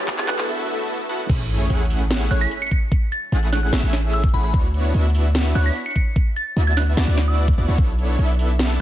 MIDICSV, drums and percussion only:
0, 0, Header, 1, 2, 480
1, 0, Start_track
1, 0, Key_signature, 3, "major"
1, 0, Tempo, 405405
1, 1534, Time_signature, 4, 2, 24, 8
1, 10433, End_track
2, 0, Start_track
2, 0, Title_t, "Drums"
2, 92, Note_on_c, 9, 36, 106
2, 93, Note_on_c, 9, 39, 103
2, 93, Note_on_c, 9, 42, 84
2, 211, Note_off_c, 9, 36, 0
2, 212, Note_off_c, 9, 39, 0
2, 212, Note_off_c, 9, 42, 0
2, 217, Note_on_c, 9, 39, 94
2, 217, Note_on_c, 9, 42, 53
2, 276, Note_off_c, 9, 42, 0
2, 276, Note_on_c, 9, 42, 65
2, 334, Note_off_c, 9, 39, 0
2, 334, Note_off_c, 9, 42, 0
2, 334, Note_on_c, 9, 39, 111
2, 334, Note_on_c, 9, 42, 70
2, 452, Note_off_c, 9, 39, 0
2, 452, Note_off_c, 9, 42, 0
2, 457, Note_on_c, 9, 39, 95
2, 575, Note_off_c, 9, 39, 0
2, 1533, Note_on_c, 9, 36, 119
2, 1534, Note_on_c, 9, 42, 88
2, 1534, Note_on_c, 9, 49, 111
2, 1651, Note_off_c, 9, 36, 0
2, 1652, Note_off_c, 9, 42, 0
2, 1652, Note_off_c, 9, 49, 0
2, 1774, Note_on_c, 9, 42, 67
2, 1892, Note_off_c, 9, 42, 0
2, 2014, Note_on_c, 9, 42, 85
2, 2133, Note_off_c, 9, 42, 0
2, 2136, Note_on_c, 9, 42, 53
2, 2195, Note_off_c, 9, 42, 0
2, 2195, Note_on_c, 9, 42, 65
2, 2253, Note_on_c, 9, 46, 95
2, 2313, Note_off_c, 9, 42, 0
2, 2371, Note_off_c, 9, 46, 0
2, 2494, Note_on_c, 9, 38, 122
2, 2494, Note_on_c, 9, 42, 85
2, 2612, Note_off_c, 9, 38, 0
2, 2612, Note_off_c, 9, 42, 0
2, 2735, Note_on_c, 9, 42, 73
2, 2854, Note_off_c, 9, 42, 0
2, 2974, Note_on_c, 9, 42, 93
2, 3093, Note_off_c, 9, 42, 0
2, 3098, Note_on_c, 9, 42, 53
2, 3156, Note_off_c, 9, 42, 0
2, 3156, Note_on_c, 9, 42, 66
2, 3213, Note_on_c, 9, 36, 64
2, 3214, Note_off_c, 9, 42, 0
2, 3214, Note_on_c, 9, 42, 65
2, 3332, Note_off_c, 9, 36, 0
2, 3332, Note_off_c, 9, 42, 0
2, 3453, Note_on_c, 9, 36, 127
2, 3454, Note_on_c, 9, 42, 81
2, 3572, Note_off_c, 9, 36, 0
2, 3573, Note_off_c, 9, 42, 0
2, 3695, Note_on_c, 9, 42, 62
2, 3813, Note_off_c, 9, 42, 0
2, 3934, Note_on_c, 9, 42, 81
2, 4053, Note_off_c, 9, 42, 0
2, 4058, Note_on_c, 9, 42, 52
2, 4116, Note_off_c, 9, 42, 0
2, 4116, Note_on_c, 9, 42, 65
2, 4175, Note_on_c, 9, 40, 60
2, 4175, Note_on_c, 9, 46, 89
2, 4235, Note_off_c, 9, 42, 0
2, 4293, Note_off_c, 9, 40, 0
2, 4293, Note_off_c, 9, 46, 0
2, 4414, Note_on_c, 9, 38, 127
2, 4414, Note_on_c, 9, 42, 82
2, 4533, Note_off_c, 9, 38, 0
2, 4533, Note_off_c, 9, 42, 0
2, 4654, Note_on_c, 9, 40, 81
2, 4654, Note_on_c, 9, 42, 73
2, 4773, Note_off_c, 9, 40, 0
2, 4773, Note_off_c, 9, 42, 0
2, 4894, Note_on_c, 9, 42, 85
2, 5012, Note_off_c, 9, 42, 0
2, 5016, Note_on_c, 9, 36, 115
2, 5018, Note_on_c, 9, 42, 50
2, 5076, Note_off_c, 9, 42, 0
2, 5076, Note_on_c, 9, 42, 65
2, 5134, Note_off_c, 9, 36, 0
2, 5135, Note_off_c, 9, 42, 0
2, 5135, Note_on_c, 9, 42, 65
2, 5253, Note_off_c, 9, 42, 0
2, 5373, Note_on_c, 9, 36, 127
2, 5375, Note_on_c, 9, 42, 82
2, 5492, Note_off_c, 9, 36, 0
2, 5493, Note_off_c, 9, 42, 0
2, 5614, Note_on_c, 9, 42, 62
2, 5732, Note_off_c, 9, 42, 0
2, 5854, Note_on_c, 9, 42, 77
2, 5973, Note_off_c, 9, 42, 0
2, 5976, Note_on_c, 9, 42, 47
2, 6035, Note_off_c, 9, 42, 0
2, 6035, Note_on_c, 9, 42, 66
2, 6093, Note_on_c, 9, 46, 93
2, 6153, Note_off_c, 9, 42, 0
2, 6211, Note_off_c, 9, 46, 0
2, 6333, Note_on_c, 9, 38, 127
2, 6333, Note_on_c, 9, 42, 80
2, 6452, Note_off_c, 9, 38, 0
2, 6452, Note_off_c, 9, 42, 0
2, 6574, Note_on_c, 9, 42, 69
2, 6692, Note_off_c, 9, 42, 0
2, 6814, Note_on_c, 9, 42, 82
2, 6932, Note_off_c, 9, 42, 0
2, 6937, Note_on_c, 9, 42, 48
2, 6994, Note_off_c, 9, 42, 0
2, 6994, Note_on_c, 9, 42, 63
2, 7053, Note_off_c, 9, 42, 0
2, 7053, Note_on_c, 9, 36, 64
2, 7053, Note_on_c, 9, 42, 65
2, 7172, Note_off_c, 9, 36, 0
2, 7172, Note_off_c, 9, 42, 0
2, 7293, Note_on_c, 9, 42, 79
2, 7294, Note_on_c, 9, 36, 116
2, 7411, Note_off_c, 9, 42, 0
2, 7412, Note_off_c, 9, 36, 0
2, 7534, Note_on_c, 9, 42, 62
2, 7652, Note_off_c, 9, 42, 0
2, 7774, Note_on_c, 9, 42, 76
2, 7893, Note_off_c, 9, 42, 0
2, 7898, Note_on_c, 9, 42, 47
2, 7957, Note_off_c, 9, 42, 0
2, 7957, Note_on_c, 9, 42, 60
2, 8015, Note_on_c, 9, 40, 66
2, 8015, Note_on_c, 9, 46, 91
2, 8075, Note_off_c, 9, 42, 0
2, 8134, Note_off_c, 9, 40, 0
2, 8134, Note_off_c, 9, 46, 0
2, 8255, Note_on_c, 9, 38, 127
2, 8255, Note_on_c, 9, 42, 77
2, 8374, Note_off_c, 9, 38, 0
2, 8374, Note_off_c, 9, 42, 0
2, 8496, Note_on_c, 9, 40, 83
2, 8496, Note_on_c, 9, 42, 66
2, 8615, Note_off_c, 9, 40, 0
2, 8615, Note_off_c, 9, 42, 0
2, 8737, Note_on_c, 9, 42, 81
2, 8855, Note_off_c, 9, 42, 0
2, 8858, Note_on_c, 9, 36, 115
2, 8859, Note_on_c, 9, 42, 48
2, 8919, Note_off_c, 9, 42, 0
2, 8919, Note_on_c, 9, 42, 65
2, 8976, Note_off_c, 9, 36, 0
2, 8976, Note_off_c, 9, 42, 0
2, 8976, Note_on_c, 9, 42, 60
2, 9095, Note_off_c, 9, 42, 0
2, 9215, Note_on_c, 9, 36, 119
2, 9216, Note_on_c, 9, 42, 79
2, 9333, Note_off_c, 9, 36, 0
2, 9335, Note_off_c, 9, 42, 0
2, 9456, Note_on_c, 9, 42, 62
2, 9575, Note_off_c, 9, 42, 0
2, 9697, Note_on_c, 9, 42, 77
2, 9815, Note_off_c, 9, 42, 0
2, 9819, Note_on_c, 9, 42, 46
2, 9878, Note_off_c, 9, 42, 0
2, 9878, Note_on_c, 9, 42, 64
2, 9935, Note_on_c, 9, 46, 94
2, 9996, Note_off_c, 9, 42, 0
2, 10053, Note_off_c, 9, 46, 0
2, 10175, Note_on_c, 9, 38, 123
2, 10175, Note_on_c, 9, 42, 80
2, 10294, Note_off_c, 9, 38, 0
2, 10294, Note_off_c, 9, 42, 0
2, 10433, End_track
0, 0, End_of_file